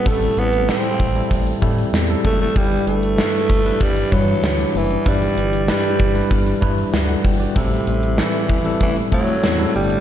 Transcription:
<<
  \new Staff \with { instrumentName = "Tine electric piano" } { \time 4/4 \key g \major \tempo 4 = 96 << { r1 | r1 | r2. <fis' d''>16 <a' fis''>16 <b' g''>16 <fis' d''>16~ | <fis' d''>16 r2. r8. | } \\ { <g c' e' a'>4 <g c' e' a'>8. <g c' e' a'>8. <g c' e' a'>8. <g c' e' a'>8. | <g d' e' bes' b'>4 <g d' e' b'>8. <g d' e' b'>8. <e d' e' b'>8. <g d' e' d''>8. | <g d' e' b'>4 <g d' e' b'>8. <g d' e' b'>8. <g d' e' b'>8. r8. | <g c' e' a'>4 <g c' e' a'>8. <g c' e' a'>8. <a c' e' a'>8. <g c' e' a'>8. | } >> }
  \new Staff \with { instrumentName = "Tine electric piano" } { \clef bass \time 4/4 \key g \major a,4. r2 r8 | g,4. r2 r8 | g,4. r2 r8 | a,4. r2 r8 | }
  \new Staff \with { instrumentName = "Tenor saxophone" } { \clef bass \time 4/4 \key g \major a8 b8 c'4. r4 a16 a16 | g8 a4. g8 fis4 e8 | g4 g4. r4. | c4 e4 e8 fis4 g8 | }
  \new Staff \with { instrumentName = "Analog synth bass" } { \clef bass \time 4/4 \key g \major a,,8 a,,8. r16 a,,8 a,,8 a,8 e,8 fis,,8 | g,,8 g,,8. r16 g,,8 g,,8 g,8 d,8 fis,,8 | g,,8 g,,8. r16 g,,8 g,,8 g,8 d,8 g,,8 | a,,8 a,,8. r16 a,,8 a,,8 a,8 e,8 g,,8 | }
  \new DrumStaff \with { instrumentName = "Drums" } \drummode { \time 4/4 <hh bd>16 hh16 hh16 hh16 sn16 hh16 <hh bd>16 hh16 <hh bd>16 hh16 <hh bd>16 hh16 sn16 hh16 <hh bd>16 hh16 | <hh bd>16 hh16 hh16 hh16 sn16 hh16 <hh bd>16 hh16 <hh bd>16 hh16 <hh bd>16 hh16 sn16 hh16 hho16 hh16 | <hh bd>16 hh16 hh16 hh16 sn16 hh16 <hh bd>16 hh16 <hh bd>16 hh16 <hh bd>16 hh16 sn16 hh16 <hho bd>16 hh16 | <hh bd>16 hh16 hh16 hh16 sn16 hh16 <hh bd>16 hh16 <hh bd>16 hh16 <hh bd>16 hh16 sn16 hh16 hho16 hh16 | }
>>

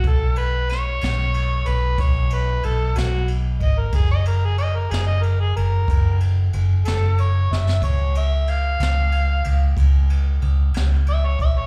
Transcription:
<<
  \new Staff \with { instrumentName = "Harmonica" } { \time 12/8 \key b \major \tempo 4. = 62 a'8 b'8 cis''4. b'8 cis''8 b'8 a'8 fis'8 r8 dis''16 ais'16 | gis'16 dis''16 ais'16 gis'16 dis''16 ais'16 gis'16 dis''16 ais'16 gis'16 ais'4 r4 a'8 cis''8 e''8 | cis''8 e''8 eis''2 r2 e''16 cis''16 e''16 cis''16 | }
  \new Staff \with { instrumentName = "Fingered electric bass" } { \clef bass \time 12/8 \key b \major b,,4. b,,4 b,,8 b,,4 b,,8 b,,4 gis,,8 | fis,,4. fis,,4 fis,,8 fis,,4 fis,,8 fis,,4 fis,,8 | cis,4. cis,4 cis,8 cis,4 cis,8 cis,4 ais,,8 | }
  \new DrumStaff \with { instrumentName = "Drums" } \drummode { \time 12/8 <bd cymr>8 cymr8 <cymr sn>8 <cymr sn>8 cymr8 cymr8 <bd cymr>8 cymr8 cymr8 <cymr sn>8 cymr8 <bd cymr>8 | <bd cymr>8 cymr8 cymr8 <cymr sn>8 cymr8 cymr8 <bd cymr>8 cymr8 cymr8 <cymr sn>8 cymr8 sn16 sn16 | <bd cymr>8 cymr8 cymr8 <cymr sn>8 cymr8 cymr8 <bd cymr>8 cymr8 cymr8 <cymr sn>8 cymr8 <bd cymr>8 | }
>>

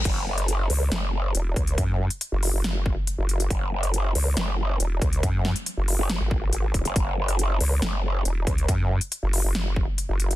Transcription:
<<
  \new Staff \with { instrumentName = "Wobble bass" } { \clef bass \time 4/4 \key cis \phrygian \tempo 4 = 139 r4. cis,8 r4 e,,8 cis,8 | fis,8. r8 fis,,8 fis,,4 r8 fis,,8. | r4. cis,8 r4 e,,8 cis,8 | fis,8. r8 fis,,8 r8 gis,,8. gis,,8 e,,16 r16 |
r4. cis,8 r4 e,,8 cis,8 | fis,8. r8 fis,,8 fis,,4 r8 fis,,8. | }
  \new Staff \with { instrumentName = "Wobble bass" } { \clef bass \time 4/4 \key cis \phrygian fis,,4. r8 fis,,4 r4 | r1 | fis,,4. r8 fis,,4 r4 | r4. r16 fis,,8 r4. fis,,16 |
fis,,4. r8 fis,,4 r4 | r1 | }
  \new DrumStaff \with { instrumentName = "Drums" } \drummode { \time 4/4 <cymc hh bd>8. hh16 hh8 hho8 <hh sn>4 hh8 <hh bd>16 hh16 | <hh bd>8. hh16 hh8 hho8 <hh sn>8 bd8 hh8 hh16 hh16 | <hh bd>8. hh16 hh8 hho8 <hh sn>4 hh8 <hh bd>16 hh16 | <hh bd>8 sn16 hh16 hh8 hho8 <hh sn>8 bd8 hh8 <hh bd>16 hh16 |
<hh bd>8. hh16 hh8 hho8 <hh sn>4 hh8 <hh bd>16 hh16 | <hh bd>8. hh16 hh8 hho8 <hh sn>8 bd8 hh8 hh16 hh16 | }
>>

